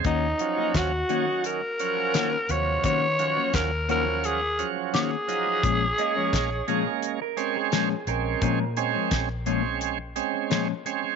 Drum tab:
HH |xxxxxxxx|xxxxxxxx|xxxxxxxx|xxxxxxxx|
SD |--o---o-|--o---o-|--o---o-|--o---o-|
BD |o-o-----|o-o-----|o-o-----|o-o-----|